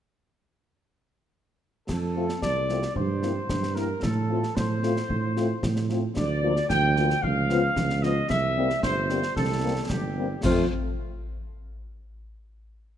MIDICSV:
0, 0, Header, 1, 5, 480
1, 0, Start_track
1, 0, Key_signature, -1, "major"
1, 0, Tempo, 534283
1, 1696, Time_signature, 2, 2, 24, 8
1, 11660, End_track
2, 0, Start_track
2, 0, Title_t, "Trumpet section"
2, 0, Program_c, 0, 61
2, 1696, Note_on_c, 0, 69, 65
2, 2143, Note_off_c, 0, 69, 0
2, 2180, Note_on_c, 0, 74, 90
2, 2625, Note_off_c, 0, 74, 0
2, 2659, Note_on_c, 0, 72, 73
2, 3373, Note_on_c, 0, 70, 74
2, 3378, Note_off_c, 0, 72, 0
2, 3615, Note_off_c, 0, 70, 0
2, 3617, Note_on_c, 0, 69, 75
2, 4095, Note_on_c, 0, 72, 81
2, 4097, Note_off_c, 0, 69, 0
2, 5295, Note_off_c, 0, 72, 0
2, 5536, Note_on_c, 0, 74, 95
2, 5982, Note_off_c, 0, 74, 0
2, 6016, Note_on_c, 0, 79, 107
2, 6462, Note_off_c, 0, 79, 0
2, 6494, Note_on_c, 0, 77, 92
2, 7214, Note_off_c, 0, 77, 0
2, 7214, Note_on_c, 0, 75, 102
2, 7454, Note_off_c, 0, 75, 0
2, 7456, Note_on_c, 0, 76, 92
2, 7901, Note_off_c, 0, 76, 0
2, 7936, Note_on_c, 0, 72, 96
2, 8381, Note_off_c, 0, 72, 0
2, 8415, Note_on_c, 0, 69, 88
2, 8861, Note_off_c, 0, 69, 0
2, 8890, Note_on_c, 0, 67, 70
2, 9372, Note_off_c, 0, 67, 0
2, 9372, Note_on_c, 0, 65, 74
2, 9573, Note_off_c, 0, 65, 0
2, 11660, End_track
3, 0, Start_track
3, 0, Title_t, "French horn section"
3, 0, Program_c, 1, 60
3, 1939, Note_on_c, 1, 57, 49
3, 1940, Note_on_c, 1, 60, 52
3, 1940, Note_on_c, 1, 65, 48
3, 2025, Note_off_c, 1, 57, 0
3, 2025, Note_off_c, 1, 60, 0
3, 2025, Note_off_c, 1, 65, 0
3, 2417, Note_on_c, 1, 60, 45
3, 2418, Note_on_c, 1, 57, 48
3, 2418, Note_on_c, 1, 65, 39
3, 2504, Note_off_c, 1, 60, 0
3, 2504, Note_off_c, 1, 65, 0
3, 2505, Note_off_c, 1, 57, 0
3, 2898, Note_on_c, 1, 58, 50
3, 2898, Note_on_c, 1, 64, 50
3, 2899, Note_on_c, 1, 60, 47
3, 2984, Note_off_c, 1, 58, 0
3, 2984, Note_off_c, 1, 64, 0
3, 2985, Note_off_c, 1, 60, 0
3, 3377, Note_on_c, 1, 64, 46
3, 3378, Note_on_c, 1, 58, 42
3, 3378, Note_on_c, 1, 60, 42
3, 3463, Note_off_c, 1, 64, 0
3, 3464, Note_off_c, 1, 58, 0
3, 3464, Note_off_c, 1, 60, 0
3, 3859, Note_on_c, 1, 60, 51
3, 3861, Note_on_c, 1, 65, 53
3, 3862, Note_on_c, 1, 57, 48
3, 3945, Note_off_c, 1, 60, 0
3, 3947, Note_off_c, 1, 57, 0
3, 3947, Note_off_c, 1, 65, 0
3, 4340, Note_on_c, 1, 60, 47
3, 4342, Note_on_c, 1, 57, 50
3, 4343, Note_on_c, 1, 65, 51
3, 4425, Note_off_c, 1, 60, 0
3, 4427, Note_off_c, 1, 57, 0
3, 4428, Note_off_c, 1, 65, 0
3, 4822, Note_on_c, 1, 60, 54
3, 4823, Note_on_c, 1, 65, 55
3, 4824, Note_on_c, 1, 57, 57
3, 4907, Note_off_c, 1, 60, 0
3, 4908, Note_off_c, 1, 57, 0
3, 4908, Note_off_c, 1, 65, 0
3, 5302, Note_on_c, 1, 57, 48
3, 5302, Note_on_c, 1, 65, 52
3, 5304, Note_on_c, 1, 60, 51
3, 5387, Note_off_c, 1, 57, 0
3, 5387, Note_off_c, 1, 65, 0
3, 5389, Note_off_c, 1, 60, 0
3, 5776, Note_on_c, 1, 65, 63
3, 5778, Note_on_c, 1, 53, 65
3, 5780, Note_on_c, 1, 58, 65
3, 5862, Note_off_c, 1, 65, 0
3, 5864, Note_off_c, 1, 53, 0
3, 5865, Note_off_c, 1, 58, 0
3, 6263, Note_on_c, 1, 53, 58
3, 6263, Note_on_c, 1, 58, 58
3, 6264, Note_on_c, 1, 65, 57
3, 6347, Note_off_c, 1, 53, 0
3, 6348, Note_off_c, 1, 58, 0
3, 6349, Note_off_c, 1, 65, 0
3, 6739, Note_on_c, 1, 53, 68
3, 6739, Note_on_c, 1, 59, 58
3, 6741, Note_on_c, 1, 65, 67
3, 6824, Note_off_c, 1, 59, 0
3, 6825, Note_off_c, 1, 53, 0
3, 6826, Note_off_c, 1, 65, 0
3, 7219, Note_on_c, 1, 59, 61
3, 7221, Note_on_c, 1, 53, 54
3, 7222, Note_on_c, 1, 65, 50
3, 7304, Note_off_c, 1, 59, 0
3, 7306, Note_off_c, 1, 53, 0
3, 7307, Note_off_c, 1, 65, 0
3, 7698, Note_on_c, 1, 55, 63
3, 7700, Note_on_c, 1, 58, 59
3, 7700, Note_on_c, 1, 60, 62
3, 7784, Note_off_c, 1, 55, 0
3, 7785, Note_off_c, 1, 58, 0
3, 7785, Note_off_c, 1, 60, 0
3, 8175, Note_on_c, 1, 55, 51
3, 8175, Note_on_c, 1, 60, 50
3, 8177, Note_on_c, 1, 58, 45
3, 8261, Note_off_c, 1, 55, 0
3, 8261, Note_off_c, 1, 60, 0
3, 8262, Note_off_c, 1, 58, 0
3, 8653, Note_on_c, 1, 60, 56
3, 8654, Note_on_c, 1, 58, 60
3, 8656, Note_on_c, 1, 55, 51
3, 8740, Note_off_c, 1, 60, 0
3, 8741, Note_off_c, 1, 58, 0
3, 8742, Note_off_c, 1, 55, 0
3, 9134, Note_on_c, 1, 58, 45
3, 9135, Note_on_c, 1, 55, 39
3, 9137, Note_on_c, 1, 60, 45
3, 9220, Note_off_c, 1, 58, 0
3, 9221, Note_off_c, 1, 55, 0
3, 9223, Note_off_c, 1, 60, 0
3, 9374, Note_on_c, 1, 53, 74
3, 9375, Note_on_c, 1, 57, 64
3, 9378, Note_on_c, 1, 60, 62
3, 9575, Note_off_c, 1, 53, 0
3, 9575, Note_off_c, 1, 57, 0
3, 9577, Note_off_c, 1, 60, 0
3, 11660, End_track
4, 0, Start_track
4, 0, Title_t, "Tuba"
4, 0, Program_c, 2, 58
4, 1696, Note_on_c, 2, 41, 58
4, 2096, Note_off_c, 2, 41, 0
4, 2172, Note_on_c, 2, 36, 56
4, 2574, Note_off_c, 2, 36, 0
4, 2656, Note_on_c, 2, 43, 68
4, 3056, Note_off_c, 2, 43, 0
4, 3137, Note_on_c, 2, 43, 64
4, 3537, Note_off_c, 2, 43, 0
4, 3620, Note_on_c, 2, 45, 71
4, 4018, Note_off_c, 2, 45, 0
4, 4099, Note_on_c, 2, 45, 67
4, 4498, Note_off_c, 2, 45, 0
4, 4575, Note_on_c, 2, 45, 66
4, 4975, Note_off_c, 2, 45, 0
4, 5059, Note_on_c, 2, 45, 72
4, 5457, Note_off_c, 2, 45, 0
4, 5538, Note_on_c, 2, 38, 71
4, 5936, Note_off_c, 2, 38, 0
4, 6020, Note_on_c, 2, 38, 85
4, 6417, Note_off_c, 2, 38, 0
4, 6498, Note_on_c, 2, 37, 81
4, 6896, Note_off_c, 2, 37, 0
4, 6977, Note_on_c, 2, 37, 76
4, 7375, Note_off_c, 2, 37, 0
4, 7456, Note_on_c, 2, 36, 69
4, 7855, Note_off_c, 2, 36, 0
4, 7941, Note_on_c, 2, 31, 74
4, 8298, Note_off_c, 2, 31, 0
4, 8417, Note_on_c, 2, 36, 69
4, 8815, Note_off_c, 2, 36, 0
4, 8898, Note_on_c, 2, 31, 64
4, 9296, Note_off_c, 2, 31, 0
4, 9379, Note_on_c, 2, 41, 72
4, 9578, Note_off_c, 2, 41, 0
4, 11660, End_track
5, 0, Start_track
5, 0, Title_t, "Drums"
5, 1698, Note_on_c, 9, 35, 69
5, 1698, Note_on_c, 9, 38, 64
5, 1698, Note_on_c, 9, 49, 41
5, 1788, Note_off_c, 9, 35, 0
5, 1788, Note_off_c, 9, 38, 0
5, 1788, Note_off_c, 9, 49, 0
5, 2059, Note_on_c, 9, 38, 49
5, 2149, Note_off_c, 9, 38, 0
5, 2178, Note_on_c, 9, 35, 66
5, 2178, Note_on_c, 9, 38, 76
5, 2268, Note_off_c, 9, 35, 0
5, 2268, Note_off_c, 9, 38, 0
5, 2418, Note_on_c, 9, 38, 41
5, 2508, Note_off_c, 9, 38, 0
5, 2538, Note_on_c, 9, 38, 51
5, 2628, Note_off_c, 9, 38, 0
5, 2658, Note_on_c, 9, 35, 73
5, 2747, Note_off_c, 9, 35, 0
5, 2898, Note_on_c, 9, 38, 48
5, 2988, Note_off_c, 9, 38, 0
5, 3139, Note_on_c, 9, 35, 71
5, 3139, Note_on_c, 9, 38, 76
5, 3229, Note_off_c, 9, 35, 0
5, 3229, Note_off_c, 9, 38, 0
5, 3262, Note_on_c, 9, 38, 48
5, 3352, Note_off_c, 9, 38, 0
5, 3381, Note_on_c, 9, 38, 46
5, 3471, Note_off_c, 9, 38, 0
5, 3619, Note_on_c, 9, 35, 78
5, 3619, Note_on_c, 9, 38, 67
5, 3709, Note_off_c, 9, 35, 0
5, 3709, Note_off_c, 9, 38, 0
5, 3982, Note_on_c, 9, 38, 47
5, 4072, Note_off_c, 9, 38, 0
5, 4103, Note_on_c, 9, 35, 73
5, 4103, Note_on_c, 9, 38, 73
5, 4192, Note_off_c, 9, 35, 0
5, 4192, Note_off_c, 9, 38, 0
5, 4342, Note_on_c, 9, 38, 50
5, 4431, Note_off_c, 9, 38, 0
5, 4462, Note_on_c, 9, 38, 50
5, 4552, Note_off_c, 9, 38, 0
5, 4582, Note_on_c, 9, 35, 69
5, 4672, Note_off_c, 9, 35, 0
5, 4823, Note_on_c, 9, 38, 49
5, 4913, Note_off_c, 9, 38, 0
5, 5059, Note_on_c, 9, 35, 76
5, 5059, Note_on_c, 9, 38, 73
5, 5149, Note_off_c, 9, 35, 0
5, 5149, Note_off_c, 9, 38, 0
5, 5177, Note_on_c, 9, 38, 47
5, 5267, Note_off_c, 9, 38, 0
5, 5297, Note_on_c, 9, 38, 41
5, 5387, Note_off_c, 9, 38, 0
5, 5538, Note_on_c, 9, 35, 72
5, 5538, Note_on_c, 9, 38, 67
5, 5538, Note_on_c, 9, 49, 27
5, 5628, Note_off_c, 9, 35, 0
5, 5628, Note_off_c, 9, 38, 0
5, 5628, Note_off_c, 9, 49, 0
5, 5897, Note_on_c, 9, 38, 46
5, 5987, Note_off_c, 9, 38, 0
5, 6017, Note_on_c, 9, 35, 75
5, 6017, Note_on_c, 9, 38, 76
5, 6107, Note_off_c, 9, 35, 0
5, 6107, Note_off_c, 9, 38, 0
5, 6257, Note_on_c, 9, 38, 46
5, 6347, Note_off_c, 9, 38, 0
5, 6380, Note_on_c, 9, 38, 51
5, 6470, Note_off_c, 9, 38, 0
5, 6498, Note_on_c, 9, 35, 69
5, 6588, Note_off_c, 9, 35, 0
5, 6737, Note_on_c, 9, 38, 50
5, 6827, Note_off_c, 9, 38, 0
5, 6976, Note_on_c, 9, 35, 78
5, 6976, Note_on_c, 9, 38, 75
5, 7066, Note_off_c, 9, 35, 0
5, 7066, Note_off_c, 9, 38, 0
5, 7096, Note_on_c, 9, 38, 47
5, 7186, Note_off_c, 9, 38, 0
5, 7217, Note_on_c, 9, 38, 47
5, 7307, Note_off_c, 9, 38, 0
5, 7456, Note_on_c, 9, 35, 73
5, 7456, Note_on_c, 9, 38, 68
5, 7546, Note_off_c, 9, 35, 0
5, 7546, Note_off_c, 9, 38, 0
5, 7815, Note_on_c, 9, 38, 47
5, 7905, Note_off_c, 9, 38, 0
5, 7935, Note_on_c, 9, 35, 72
5, 7935, Note_on_c, 9, 38, 83
5, 8025, Note_off_c, 9, 35, 0
5, 8025, Note_off_c, 9, 38, 0
5, 8172, Note_on_c, 9, 38, 51
5, 8262, Note_off_c, 9, 38, 0
5, 8292, Note_on_c, 9, 38, 54
5, 8382, Note_off_c, 9, 38, 0
5, 8413, Note_on_c, 9, 35, 69
5, 8413, Note_on_c, 9, 38, 58
5, 8503, Note_off_c, 9, 35, 0
5, 8503, Note_off_c, 9, 38, 0
5, 8891, Note_on_c, 9, 35, 72
5, 8891, Note_on_c, 9, 38, 76
5, 8981, Note_off_c, 9, 35, 0
5, 8981, Note_off_c, 9, 38, 0
5, 9374, Note_on_c, 9, 35, 77
5, 9374, Note_on_c, 9, 38, 78
5, 9374, Note_on_c, 9, 49, 66
5, 9464, Note_off_c, 9, 35, 0
5, 9464, Note_off_c, 9, 38, 0
5, 9464, Note_off_c, 9, 49, 0
5, 11660, End_track
0, 0, End_of_file